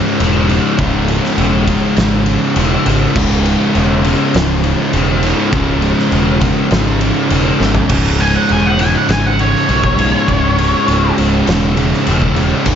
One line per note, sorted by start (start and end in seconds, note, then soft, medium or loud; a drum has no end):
0.00 0.19 C#2 medium
0.00 0.50 C#2 loud
0.00 0.19 G#2 loud
0.00 0.48 G#2 loud
0.00 0.20 C#3 loud
0.00 0.47 C#3 loud
0.20 0.58 E1 loud
0.20 0.49 C#2 medium
0.20 0.49 G#2 medium
0.20 0.50 C#3 loud
0.20 ride loud
0.49 0.79 C#2 medium
0.49 0.79 G#2 medium
0.49 0.80 C#3 loud
0.49 ride medium
0.79 1.17 C#1 loud
0.79 1.09 C#2 loud
0.79 1.09 G#2 loud
0.79 1.10 C#3 loud
0.79 kick loud
0.79 ride loud
1.08 1.38 C#2 medium
1.08 1.38 G#2 medium
1.08 1.39 C#3 medium
1.08 ride medium
1.25 snare soft
1.38 1.76 E1 loud
1.38 1.68 C#2 medium
1.38 1.68 G#2 medium
1.38 1.69 C#3 loud
1.38 ride medium
1.67 1.98 C#2 medium
1.67 1.97 G#2 medium
1.67 1.99 C#3 loud
1.67 kick medium
1.67 ride medium
1.96 2.35 G#1 loud
1.96 2.28 C#2 loud
1.96 2.27 G#2 loud
1.96 2.29 C#3 loud
1.96 snare loud
1.96 ride loud
2.26 2.57 C#2 medium
2.26 2.57 G#2 loud
2.26 2.58 C#3 medium
2.26 ride medium
2.56 2.75 E1 loud
2.56 2.86 C#2 medium
2.56 2.86 G#2 loud
2.56 2.88 C#3 loud
2.56 ride loud
2.86 3.05 G#1 loud
2.86 3.16 C#2 medium
2.86 3.16 G#2 medium
2.86 3.18 C#3 medium
2.86 ride medium
3.16 3.54 C#1 loud
3.16 3.45 C#2 loud
3.16 3.46 G#2 loud
3.16 3.47 C#3 loud
3.16 kick loud
3.16 crash loud
3.45 3.75 C#2 medium
3.45 3.74 G#2 medium
3.45 3.76 C#3 medium
3.45 ride medium
3.75 4.13 E1 loud
3.75 4.04 C#2 medium
3.75 4.04 G#2 medium
3.75 4.05 C#3 loud
3.75 ride medium
4.04 4.34 C#2 medium
4.04 4.34 G#2 medium
4.04 4.35 C#3 loud
4.04 ride medium
4.34 4.73 C#1 medium
4.34 4.64 C#2 loud
4.34 4.64 G#2 loud
4.34 4.65 C#3 loud
4.34 snare loud
4.34 ride loud
4.64 4.93 C#2 medium
4.64 4.93 G#2 medium
4.64 4.94 C#3 loud
4.64 ride medium
4.93 5.32 E1 loud
4.93 5.22 C#2 medium
4.93 5.22 G#2 medium
4.93 5.23 C#3 loud
4.93 ride loud
5.23 5.51 C#2 medium
5.23 5.52 G#2 medium
5.23 5.52 C#3 loud
5.23 ride medium
5.52 5.91 C#1 loud
5.52 5.80 C#2 loud
5.52 5.81 G#2 loud
5.52 5.82 C#3 loud
5.52 kick loud
5.52 ride loud
5.81 6.10 C#2 medium
5.81 6.11 G#2 medium
5.81 6.12 C#3 medium
5.81 ride medium
5.99 snare soft
6.12 6.50 E1 loud
6.12 6.39 C#2 medium
6.12 6.40 G#2 loud
6.12 6.41 C#3 loud
6.12 ride loud
6.40 6.68 C#2 medium
6.40 6.70 G#2 medium
6.40 6.70 C#3 medium
6.40 kick medium
6.40 ride medium
6.70 7.10 G#1 medium
6.70 6.99 C#2 medium
6.70 7.00 G#2 medium
6.70 7.00 C#3 loud
6.70 snare loud
6.70 ride loud
7.00 7.30 C#2 medium
7.00 7.30 G#2 loud
7.00 7.31 C#3 loud
7.00 ride medium
7.30 7.50 E1 medium
7.30 7.58 C#2 medium
7.30 7.59 G#2 loud
7.30 7.60 C#3 loud
7.30 ride loud
7.59 7.79 G#1 medium
7.59 7.87 C#2 medium
7.59 7.88 G#2 loud
7.59 7.88 C#3 medium
7.59 snare medium
7.75 floor tom loud
7.88 8.34 C#1 loud
7.88 8.19 C#2 medium
7.88 8.19 G#2 medium
7.88 8.20 C#3 loud
7.88 kick loud
7.88 crash loud
8.19 8.49 C#2 medium
8.19 8.49 G#2 medium
8.19 8.50 C#3 medium
8.19 8.35 G#5 medium
8.19 ride medium
8.36 8.52 F#5 medium
8.49 8.94 E1 loud
8.49 8.78 C#2 medium
8.49 8.78 G#2 loud
8.49 8.79 C#3 medium
8.49 8.66 G#5 medium
8.49 ride medium
8.66 8.80 F#5 medium
8.78 9.07 C#2 medium
8.78 9.08 G#2 loud
8.78 9.09 C#3 loud
8.78 8.94 G#5 medium
8.78 ride medium
8.97 9.10 F#5 medium
9.08 9.53 G#1 medium
9.08 9.39 C#2 medium
9.08 9.38 G#2 medium
9.08 9.40 C#3 medium
9.08 9.26 G#5 medium
9.08 snare loud
9.08 ride loud
9.26 9.40 F#5 medium
9.39 9.67 C#2 medium
9.39 9.67 G#2 loud
9.39 9.68 C#3 loud
9.39 11.14 C#5 medium
9.39 ride medium
9.55 snare soft
9.67 10.13 B1 loud
9.67 9.97 C#2 medium
9.67 9.97 G#2 medium
9.67 9.98 C#3 loud
9.67 ride loud
9.84 kick loud
9.97 10.27 C#2 medium
9.97 10.27 G#2 medium
9.97 10.28 C#3 loud
9.97 ride medium
10.27 10.73 C#1 loud
10.27 10.57 C#2 loud
10.27 10.57 G#2 loud
10.27 10.58 C#3 loud
10.27 kick loud
10.27 ride loud
10.57 10.86 C#2 medium
10.57 10.86 G#2 medium
10.57 10.87 C#3 medium
10.57 ride medium
10.86 11.10 C#1 loud
10.86 11.17 C#2 medium
10.86 11.17 G#2 medium
10.86 11.18 C#3 medium
10.86 ride loud
11.17 11.40 C#1 medium
11.17 11.45 C#2 medium
11.17 11.46 G#2 loud
11.17 11.47 C#3 loud
11.17 ride medium
11.46 11.92 E1 medium
11.46 11.76 C#2 medium
11.46 11.76 G#2 medium
11.46 11.78 C#3 loud
11.46 snare loud
11.46 ride loud
11.76 12.06 C#2 medium
11.76 12.06 G#2 loud
11.76 12.07 C#3 loud
11.76 ride medium
11.94 snare soft
12.07 12.52 E1 medium
12.07 12.36 C#2 medium
12.07 12.36 G#2 loud
12.07 12.37 C#3 loud
12.07 ride loud
12.22 kick medium
12.36 12.64 C#2 medium
12.36 12.65 G#2 loud
12.36 12.66 C#3 loud
12.36 ride medium
12.65 12.75 C#1 loud
12.65 12.75 C#2 medium
12.65 12.75 G#2 loud
12.65 12.75 C#3 loud
12.65 kick loud
12.65 crash loud